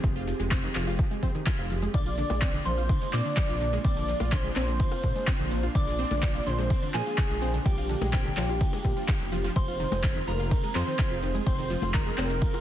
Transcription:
Already playing: F3 C4 G4 G#4
0.04 F1 F3 F4, kick, closed hi-hat, shaker
0.16 F4 F5, closed hi-hat
0.28 F3 F4, open hi-hat, shaker
0.40 F1 G#3 G#4, closed hi-hat, shaker
0.51 C4 C5, kick, clap, closed hi-hat, shaker
0.63 D#3 D#4, closed hi-hat
0.75 F1 F3 F4, clap, open hi-hat, shaker
0.87 F4 F5, closed hi-hat, shaker
0.99 F3 F4, kick, closed hi-hat, shaker
1.11 G#3 G#4, closed hi-hat
1.23 F2 C4 C5, kick, open hi-hat, shaker
1.35 D#3 D#4, closed hi-hat, shaker
1.47 F3 F4, kick, clap, closed hi-hat, shaker
1.59 F1 F4 F5, closed hi-hat
1.70 F3 F4, open hi-hat, shaker
1.82 G#3 G#4, closed hi-hat, shaker
1.94 A#1 F3 A#3 D4 F4 D5 D6, kick, closed hi-hat, ride, shaker
2.06 F4 F5, closed hi-hat
2.18 D3 D4, open hi-hat, shaker
2.30 A#1 G#3 G#4, closed hi-hat, high bongo, high conga, shaker
2.42 C4 C5, kick, clap, closed hi-hat, ride, shaker
2.54 D3 D4, closed hi-hat
2.65 A#1 F3 F4 C5 C6, open hi-hat, shaker
2.78 F4 F5, closed hi-hat, shaker
2.89 D3 D4, kick, closed hi-hat, ride, shaker
3.01 G#3 G#4, closed hi-hat
3.13 A#2 C4 C5 D5 D6, clap, open hi-hat, shaker
3.25 D3 D4, closed hi-hat, shaker
3.37 F3 F4, kick, clap, closed hi-hat, ride, shaker
3.49 A#1 F4 F5, closed hi-hat
3.61 D3 D4, open hi-hat, shaker
3.73 G#3 G#4, closed hi-hat, shaker
3.84 A#1 C4 C5 D5 D6, kick, closed hi-hat, ride, shaker
3.97 D3 D4, closed hi-hat
4.08 F3 F4, open hi-hat, shaker
4.20 A#1 F4 F5, closed hi-hat, high bongo, high conga, shaker
4.32 D3 D4 C5 C6, kick, clap, closed hi-hat, ride, shaker
4.44 G#3 G#4, closed hi-hat
4.56 A#1 C4 C5, clap, open hi-hat, cowbell, shaker
4.68 D3 D4, closed hi-hat, shaker
4.80 F3 F4, kick, closed hi-hat, ride, shaker
4.92 F4 F5, closed hi-hat, high bongo
5.04 A#2 D3 D4, kick, open hi-hat, shaker
5.16 G#3 G#4, closed hi-hat, shaker
5.27 C4 C5, kick, clap, closed hi-hat, ride, shaker
5.39 A#1 D3 D4, closed hi-hat
5.51 F3 F4, open hi-hat, shaker
5.63 F4 F5, closed hi-hat, shaker
5.75 A#1 D3 D4 D5 D6, kick, closed hi-hat, ride, shaker
5.87 G#3 G#4, closed hi-hat
5.99 C4 C5, open hi-hat, shaker
6.11 A#1 D3 D4, closed hi-hat, high bongo, high conga, shaker
6.23 F3 F4, kick, clap, closed hi-hat, ride, shaker
6.35 F4 F5, closed hi-hat
6.46 A#1 D3 D4 C5 C6, open hi-hat, shaker
6.58 G#3 G#4, closed hi-hat, shaker
6.70 C4 C5, kick, closed hi-hat, ride, shaker
6.82 D3 D4, closed hi-hat
6.94 A#2 F3 F4 G#4 G#5, clap, open hi-hat, shaker
7.06 F4 F5, closed hi-hat, shaker
7.18 D3 D4, kick, clap, closed hi-hat, ride, shaker
7.30 A#1 G#3 G#4, closed hi-hat
7.42 C4 C5, open hi-hat, shaker
7.54 D3 D4, closed hi-hat, shaker
7.66 A#1 F3 F4 G4 G5, kick, closed hi-hat, ride, shaker
7.78 F4 F5, closed hi-hat
7.89 D3 D4, open hi-hat, shaker
8.01 A#1 G#3 G#4, closed hi-hat, high bongo, high conga, shaker
8.13 C4 C5 G5, kick, clap, closed hi-hat, ride, shaker
8.25 D3 D4, closed hi-hat
8.37 A#1 F3 F4, clap, open hi-hat, cowbell, shaker
8.49 F4 F5, closed hi-hat, shaker
8.61 D3 D4, kick, closed hi-hat, ride, shaker
8.73 G#3 G#4, closed hi-hat, high bongo
8.85 A#2, kick, open hi-hat, high bongo, shaker
8.97 F3 F4, closed hi-hat, shaker
9.08 F4 F5, kick, clap, closed hi-hat, ride, shaker
9.20 F1, closed hi-hat
9.32 F3 F4, open hi-hat, shaker
9.44 F3 F4, closed hi-hat, shaker
9.56 F1 F3 C4 F4 G#4 C5 C6, kick, closed hi-hat, ride, shaker
9.68 F4 F5, closed hi-hat
9.80 D#3 D#4, open hi-hat, shaker
9.92 F1 G#3 G#4, closed hi-hat, high bongo, high conga, shaker
10.04 C4 C5, kick, clap, closed hi-hat, ride, shaker
10.16 D#3 D#4, closed hi-hat
10.27 F1 F3 F4 A#4 A#5, open hi-hat, shaker
10.40 F4 F5, closed hi-hat, shaker
10.51 D#3 D#4, kick, closed hi-hat, ride, shaker
10.63 G#3 G#4, closed hi-hat
10.75 F2 C4 C5 C6, clap, open hi-hat, shaker
10.87 D#3 D#4, closed hi-hat, shaker
10.99 F3 F4, kick, clap, closed hi-hat, ride, shaker
11.11 F1 F4 F5, closed hi-hat
11.23 D#3 D#4, open hi-hat, shaker
11.35 G#3 G#4, closed hi-hat, shaker
11.46 F1 C4 C5 C6, kick, closed hi-hat, ride, shaker
11.59 D#3 D#4, closed hi-hat
11.70 F3 F4, open hi-hat, shaker
11.82 F1 F4 F5, closed hi-hat, high bongo, high conga, shaker
11.94 D#3 D#4 A#4 A#5, kick, clap, closed hi-hat, ride, shaker
12.06 G#3 G#4, closed hi-hat
12.18 F1 C4 C5, clap, open hi-hat, cowbell, shaker
12.30 D#3 D#4, closed hi-hat, shaker
12.42 F3 F4, kick, closed hi-hat, ride, shaker
12.54 F4 F5, closed hi-hat, high bongo

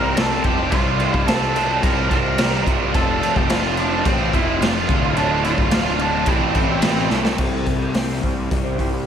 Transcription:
Already playing: C2 C3 G3 C4 F4 G4 A#4 C5 A#5
0.03 C4 F4 G4 C5
0.17 C3 G3 C4 F4 G4 A4 C5 A5, snare, crash
0.30 C4 F4 G4 C5
0.43 F1 C4 F4 G4 C5 G5, kick, crash
0.57 C4 F4 G4 C5
0.72 C2 C3 G3 C4 F4 G4 C5 F5, kick, crash
0.99 C4 F4 G4 C5, crash
1.10 G4 C5 E5, kick
1.14 C2 C4 F4
1.26 C3 G3 C4 F4 G4 A4 C5 A5, snare, crash
1.55 C3 G3 C4 F4 G4 C5, crash
1.69 C4 F4 G4 C5
1.83 C2 A#4 A#5, kick, crash
1.96 C4 F4 G4 C5
2.09 C2 C4 F4 G4 A#4 C5 A#5, kick, crash
2.22 C4 F4 G4 C5
2.36 C3 G3 C4 F4 G4 C5, snare, crash
2.51 C4 F4 G4 C5
2.65 C2 C4 F4 G4 C5, kick, crash
2.80 C4 F4 G4 C5
2.92 F1 F2 C3 F3 A3 C4 F4 A4, kick, crash
2.96 C3 F3 A5
3.20 F3 A3 C4 F4, crash
3.34 F1 F3 A3 C4 F4 G4 G5, kick
3.47 F2 C3 F3 A3 C4 F4, snare, crash
3.52 F5
3.76 F2 C3 F3 A3 C4 D4 F4 D5, crash
3.91 F3 A3 C4 F4
4.05 A1 C4 C5, kick, crash
4.18 F3 A3 C4 F4
4.32 F1 F3 A3 C4 E4 F4 E5, kick, crash
4.47 F3 A3 C4 F4
4.60 F2 C3 F3 A3 C4 F4 F5, snare, crash
4.75 F3 A3 C4 F4
4.89 D1 D2 A2 D3 A3 F4, kick, crash
5.02 D3 A3 F4
5.15 D1 D2 A2 D3 A3 D4 F4 D5, crash
5.43 A2 D3 A3 F4 F5, crash
5.57 D1 D3 A3 F4, kick
5.69 D2 A2 D3 A3 F4, snare, crash
5.98 A2 D3 A3 F4 D5, crash
6.02 D4
6.12 D3 A3 F4
6.25 A1 A2 E3 A3 C4 E4 A4 C5, kick, crash
6.31 A3
6.41 A3 C4 E4 A4
6.55 A1 A3 C4 E4 A4, kick, crash
6.68 A3 C4 E4 A4
6.82 A1 A2 E3 A3 C4 E4 A4, snare, crash
6.96 A3 C4 E4 A4
7.09 C2 E3 A3 C4 E4 A4, snare
7.14 A2
7.24 A3 C4 E4 A4, snare
7.37 C2 C3 G3 C4 E4 G4 C5, kick, crash
7.66 C2, kick, open hi-hat
7.78 C4 E4 G4 C5
7.93 C3 G3 C4 E4 G4 C5, snare, open hi-hat
8.07 C4 E4 G4 C5, snare
8.23 C2, kick, open hi-hat
8.35 muted clean electric guitar stroke
8.50 C2 C3 G3 C4, kick, open hi-hat
8.64 C4 E4 G4 C5
8.77 C2 C4 E4 G4 C5, kick, open hi-hat
8.91 muted clean electric guitar stroke

